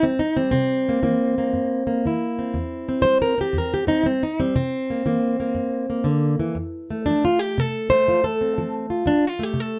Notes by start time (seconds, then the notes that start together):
0.03 G3 C4
0.19 D#4
0.37 G3 C4
0.51 C3 C4
0.89 A#3
1.03 E3 A#3
1.38 A#3
1.53 G2
1.87 A#3
2.05 E3 E4
2.39 C4
2.54 E2
2.89 C4
3.02 G3 C5
3.22 A#4
3.38 C4 G4
3.53 E2
3.58 A#4
3.74 G4
3.87 C4 D#4
4.03 G3 C4
4.23 D#4
4.40 G3 C4
4.56 C3 C4
4.90 A#3
5.06 E3 A#3
5.40 A#3
5.55 G2
5.90 A#3
6.04 D3
6.40 E3
6.55 F2
6.90 A3
7.06 F3 D4
7.25 F4
7.39 G4
7.58 C3 A4
7.90 A3 C5
8.08 F3 F4
8.24 A4
8.41 C4
8.58 F3
8.90 F4
9.06 A3 D4
9.27 F4
9.39 A3
9.43 G4
9.54 C3
9.60 A4